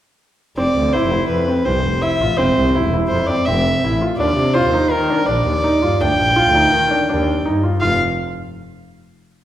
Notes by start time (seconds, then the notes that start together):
0.57 F1 C4 D5
0.75 D2
0.93 E4 C5
1.02 F1
1.12 E4
1.29 F2 B4
1.48 C4
1.65 C2 C4 C5
1.84 F1
2.02 E4 E5
2.19 A1 F4
2.37 E1 C4 C5
2.56 C2
2.75 E4
2.83 E1
2.94 E4
3.08 F2 C5
3.27 C4 D5
3.45 F1 C4 E5
3.84 A1 E4
4.02 F4
4.18 D#2 D4 D5
4.37 C3
4.54 F4 C5
4.64 D#2
4.74 D#4
4.91 D#3 A#4
5.10 D4
5.26 A#1 D4 D5
5.46 D#2
5.64 D#4
5.82 G2 F4
6.00 D2 D4 G5
6.18 A#1
6.36 F4
6.46 D2
6.55 D#4
6.73 D#3
6.91 D4
7.09 D#2 D4
7.45 G2 D#4
7.63 F4
7.81 F1 F4 F5